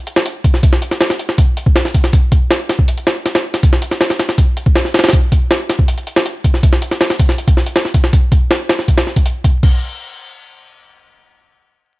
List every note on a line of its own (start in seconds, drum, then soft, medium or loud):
0.07 closed hi-hat medium
0.16 snare loud
0.26 closed hi-hat medium
0.44 kick medium
0.44 closed hi-hat medium
0.54 snare soft
0.63 kick loud
0.63 closed hi-hat medium
0.73 snare soft
0.82 closed hi-hat medium
0.91 snare soft
1.01 snare loud
1.01 closed hi-hat medium
1.10 snare medium
1.19 closed hi-hat medium
1.29 snare soft
1.38 kick loud
1.38 closed hi-hat medium
1.57 closed hi-hat medium
1.66 kick loud
1.76 snare loud
1.76 closed hi-hat medium
1.85 snare soft
1.94 kick medium
1.94 closed hi-hat medium
2.04 snare soft
2.13 kick loud
2.13 closed hi-hat medium
2.32 kick loud
2.32 closed hi-hat medium
2.51 snare loud
2.51 closed hi-hat medium
2.69 snare medium
2.69 closed hi-hat medium
2.79 kick medium
2.88 closed hi-hat medium
2.98 closed hi-hat soft
3.07 snare loud
3.07 closed hi-hat medium
3.26 snare soft
3.26 closed hi-hat medium
3.35 snare loud
3.35 closed hi-hat medium
3.54 snare soft
3.54 closed hi-hat medium
3.63 kick loud
3.63 closed hi-hat medium
3.73 snare soft
3.82 closed hi-hat medium
3.91 snare soft
4.01 snare loud
4.01 closed hi-hat medium
4.10 snare medium
4.19 snare medium
4.19 closed hi-hat medium
4.29 snare soft
4.38 kick loud
4.38 closed hi-hat medium
4.57 closed hi-hat medium
4.66 kick medium
4.76 snare loud
4.76 closed hi-hat medium
4.85 snare soft
4.94 snare medium
4.94 closed hi-hat medium
4.99 snare medium
4.99 closed hi-hat medium
5.04 snare medium
5.04 closed hi-hat medium
5.08 snare medium
5.08 closed hi-hat medium
5.13 kick loud
5.13 closed hi-hat medium
5.32 kick loud
5.32 closed hi-hat medium
5.51 snare loud
5.51 closed hi-hat medium
5.69 snare medium
5.69 closed hi-hat medium
5.79 kick medium
5.88 closed hi-hat medium
5.98 closed hi-hat soft
6.07 closed hi-hat medium
6.16 snare loud
6.26 closed hi-hat medium
6.44 kick medium
6.44 closed hi-hat medium
6.54 snare soft
6.63 kick loud
6.63 closed hi-hat medium
6.73 snare soft
6.82 closed hi-hat medium
6.91 snare soft
7.01 snare loud
7.01 closed hi-hat medium
7.10 snare medium
7.19 kick loud
7.19 closed hi-hat medium
7.29 snare soft
7.38 closed hi-hat medium
7.48 kick loud
7.48 closed hi-hat medium
7.57 snare soft
7.66 closed hi-hat medium
7.76 snare loud
7.76 closed hi-hat medium
7.85 snare soft
7.94 kick medium
7.94 closed hi-hat medium
8.04 snare soft
8.13 kick loud
8.13 closed hi-hat medium
8.32 kick loud
8.32 closed hi-hat medium
8.51 snare loud
8.51 closed hi-hat medium
8.69 snare loud
8.69 closed hi-hat medium
8.79 snare soft
8.88 kick medium
8.88 closed hi-hat medium
8.98 snare loud
8.98 closed hi-hat medium
9.07 snare soft
9.16 kick medium
9.16 closed hi-hat medium
9.26 closed hi-hat medium
9.44 kick medium
9.44 closed hi-hat medium
9.63 kick loud
9.63 crash medium